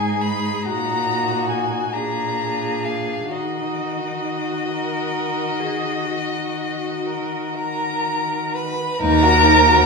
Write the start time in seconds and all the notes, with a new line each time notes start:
Already playing: G#2 D#4 G#4 G#5
0.21 B5
0.63 A#2 D#4 F#4 A#5
1.49 G#5
1.93 A#2 D4 G#4 A#5
2.85 F5
3.31 D#3 D#4 F#4 D#5
4.69 A#4
5.60 G#4
6.06 F#4
7.06 A#4
7.57 A#4 A#5
8.54 B4 B5
9.00 D#2 D#4 A#4 A#5
9.22 F#4
9.45 D#4
9.67 F#4